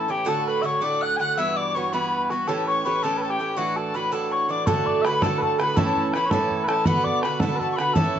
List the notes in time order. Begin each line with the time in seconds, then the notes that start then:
Already playing: A4 A5
0.08 A2 E3 C#4 E4 G4 G5
0.25 A2 D3 A3 F#4 A4 A5
0.47 B4 B5
0.62 A2 D3 A3 F#4 C#5 E5 C#6
0.81 A2 D3 A3 F#4 D5 D6
1.01 F#5 F#6
1.17 A2 D3 A3 F#5 G#5 F#6
1.21 F#4
1.37 G2 E3 B3 F#4 E5 E6
1.56 D5 D6
1.75 G2 E3 B3 F#4 C#5 C#6
1.93 G2 E3 B3 F#4 B4 B5
2.30 G2 E3 B3 F#4
2.48 A2 E3 C#4 G4 A4 A5
2.67 C#5 C#6
2.85 A2 E3 C#4 G4 B4
3.03 A2 E3 C#4 G4 A4 A5
3.17 B4
3.22 A4 A5
3.30 G4 G5
3.39 A2 E3 C#4 G4
3.56 A2 E3 D4 F#4 F#5
3.76 A4 A5
3.94 A2 E3 D4 F#4 B4 B5
4.12 A2 E3 D4 F#4 A4 A5
4.32 C#5 C#6
4.48 A2 E3 D4 F#4 D5 D6
4.67 A2 D3 A3 F#4 A4 A5, bodhran
4.86 D5, bodhran
5.02 A2 D3 B4 E5 B5, bodhran
5.06 A3 F#4
5.22 A2 D3 A3 F#4 A4 A5, bodhran
5.38 B4, bodhran
5.42 A4 A5
5.58 A2 D3 A3 F#4 B4 B5, bodhran
5.76 A2 E3 C#4 E4 A4 A5, bodhran
5.97 bodhran
6.13 A2 E3 C#4 E4 B4 B5, bodhran
6.26 C#5 B5
6.30 A2 E3 C#4 E4 A4 A5, bodhran
6.51 bodhran
6.64 A2 A4 B4
6.68 E3 C#4 E4 A5, bodhran
6.85 B2 D3 B3 F#4 B4 B5, bodhran
7.04 D5 D6, bodhran
7.22 B2 D3 B3 F#4 B4 B5, bodhran
7.40 B2 D3 B3 F#4 A4 A5, bodhran
7.56 A4 B4
7.60 A5, bodhran
7.71 C#6
7.76 B2 D3 B3 B4 B5, bodhran
7.80 F#4
7.93 A2 E3 C#4 E4 A4 A5, bodhran
8.16 bodhran